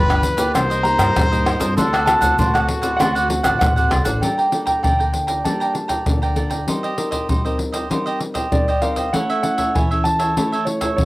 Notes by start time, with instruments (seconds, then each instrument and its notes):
Already playing: upright bass G1, nylon-string guitar D3, trumpet B4, grand piano B5
0.09 nylon-string guitar F3 B3 D4, cavaquinho G4 B4 D5, pandeiro, tamborim, shaker
0.23 muted cavaquinho stroke, pandeiro, shaker
0.37 nylon-string guitar A#3 D#4 G4, cavaquinho G4 B4 D5, pandeiro, shaker
0.54 upright bass C2, nylon-string guitar C3, cavaquinho D#4 A#4 C5 D#5, trumpet C5, pandeiro, tamborim, shaker, surdo
0.70 cavaquinho A#4 C5 D#5, pandeiro, shaker
0.83 nylon-string guitar A#3 D#4 G4, grand piano A#5, muted cavaquinho stroke, pandeiro
0.98 upright bass G2, cavaquinho A#4 C5 D#5, pandeiro, tamborim, shaker, surdo
1.16 upright bass G2, nylon-string guitar G2, pandeiro, tamborim, shaker, surdo
1.32 nylon-string guitar A#3 D#4 G4, cavaquinho A#4 C5 D#5, pandeiro, shaker, surdo
1.45 cavaquinho D#4 A#4 C5 D#5, pandeiro, tamborim
1.60 upright bass G2, nylon-string guitar C4 F#4 A4, cavaquinho A#4 C5 D#5, pandeiro, shaker, surdo
1.77 upright bass D2, nylon-string guitar D3, cavaquinho D4 C5 D5 F#5, trumpet A4, pandeiro, shaker, surdo
1.93 cavaquinho C5 D5 F#5, pandeiro, tamborim, shaker
2.06 nylon-string guitar C4 F#4 A4, grand piano A5, pandeiro, tamborim, shaker
2.21 upright bass D2, cavaquinho C5 D5 F#5, pandeiro, shaker, surdo
2.38 upright bass D2, nylon-string guitar A2, cavaquinho D4 C5 D5 F#5, trumpet F#4, pandeiro, shaker, surdo
2.54 nylon-string guitar C4 F#4 A4, cavaquinho C5 D5 F#5, pandeiro, tamborim, shaker
2.68 muted cavaquinho stroke, pandeiro
2.82 nylon-string guitar C4 F#4 A4, cavaquinho C5 D5 F#5, pandeiro, shaker
2.97 upright bass D2, nylon-string guitar D3 C4 F#4, cavaquinho D4 C5 D5, grand piano F#5, pandeiro, tamborim, shaker, surdo
3.01 nylon-string guitar A4, cavaquinho F#5
3.15 cavaquinho C5 D5 F#5, pandeiro, shaker
3.29 nylon-string guitar C4 F#4 A4, muted cavaquinho stroke, pandeiro
3.43 upright bass A1, cavaquinho C5 D5 F#5, pandeiro, tamborim, shaker, surdo
3.59 upright bass A1, nylon-string guitar A2, grand piano F#5, pandeiro, tamborim, shaker, surdo
3.76 nylon-string guitar C4 F#4 A4, cavaquinho C5 D5 F#5, pandeiro, shaker, surdo
3.90 upright bass C2, cavaquinho D4 C5 D5 F#5, pandeiro, tamborim, surdo
4.05 upright bass A1, nylon-string guitar A#3 D4 A4, cavaquinho C5 D5 F#5, pandeiro, shaker, surdo
4.21 nylon-string guitar G3, cavaquinho A4 D5 G5 A#5, grand piano G5, pandeiro, surdo
4.38 cavaquinho D5 G5 A#5, pandeiro
4.52 nylon-string guitar A#3 D4 A4, pandeiro
4.66 cavaquinho D5 G5 A#5, pandeiro, surdo
4.83 nylon-string guitar D3, cavaquinho A4 D5 G5 A#5, grand piano G5, pandeiro, surdo
4.99 nylon-string guitar A#3 D4 A4, cavaquinho D5 G5 A#5, pandeiro
5.13 muted cavaquinho stroke, pandeiro
5.27 cavaquinho D5 G5 A#5, pandeiro
5.44 nylon-string guitar G3 A#3 D4 A4, cavaquinho A4 D5 G5 A#5, grand piano A5, pandeiro, surdo
5.60 cavaquinho D5 G5 A#5, pandeiro
5.74 muted cavaquinho stroke, pandeiro
5.88 cavaquinho D5 G5 A#5, pandeiro, surdo
6.06 nylon-string guitar D3 A#3 D4 A4, pandeiro, surdo
6.22 cavaquinho D5 G5 A#5, pandeiro, surdo
6.36 nylon-string guitar A#3 D4 A4, cavaquinho A4 D5 G5 A#5, pandeiro, surdo
6.50 cavaquinho D5 G5 A#5, pandeiro, surdo
6.67 nylon-string guitar G3 C4 D#4 A#4, cavaquinho D#4 G4 C5 D#5, pandeiro, surdo
6.83 cavaquinho G4 C5 D#5, pandeiro
6.97 nylon-string guitar C4 D#4 A#4, pandeiro
7.11 cavaquinho G4 C5 D#5, pandeiro, surdo
7.29 nylon-string guitar G3, cavaquinho D#4 G4 C5 D#5, pandeiro, surdo
7.45 nylon-string guitar C4 D#4 A#4, cavaquinho G4 C5 D#5, pandeiro
7.59 muted cavaquinho stroke, pandeiro
7.72 cavaquinho G4 C5 D#5, pandeiro
7.90 nylon-string guitar G3 C4 D#4 A#4, cavaquinho D#4 G4 C5 D#5, pandeiro, surdo
8.06 cavaquinho G4 C5 D#5, pandeiro
8.20 muted cavaquinho stroke, pandeiro
8.34 cavaquinho G4 C5 D#5, pandeiro, surdo
8.52 nylon-string guitar G3 C4 D#4 A#4, grand piano D5, pandeiro, surdo
8.68 cavaquinho G4 C5 D#5, pandeiro, surdo
8.81 nylon-string guitar C4 D#4 A#4, cavaquinho D#4 G4 C5 D#5, grand piano F5, pandeiro
8.96 cavaquinho G4 C5 D#5, pandeiro, surdo
9.13 nylon-string guitar A3 C#4 E4 A4, cavaquinho E4 A4 C#5 E5, grand piano F#5, pandeiro, surdo
9.30 cavaquinho A4 C#5 E5, pandeiro
9.43 nylon-string guitar C#4 E4 A4, grand piano F#5, pandeiro
9.58 cavaquinho A4 C#5 E5, pandeiro, surdo
9.75 nylon-string guitar E3, cavaquinho E4 A4 C#5 E5, grand piano G#5, pandeiro, surdo
9.91 nylon-string guitar C#4 E4 A4, cavaquinho A4 C#5 E5, pandeiro
10.04 grand piano A5, muted cavaquinho stroke, pandeiro
10.19 cavaquinho A4 C#5 E5, pandeiro
10.37 nylon-string guitar A3 C#4 E4 A4, cavaquinho E4 A4 C#5 E5, pandeiro, surdo
10.52 cavaquinho A4 C#5 E5, pandeiro
10.65 nylon-string guitar C#4 E4 A4, grand piano C#5, muted cavaquinho stroke, pandeiro
10.81 cavaquinho A4 C#5 E5, pandeiro, surdo
10.97 nylon-string guitar E3, grand piano C#5, pandeiro, surdo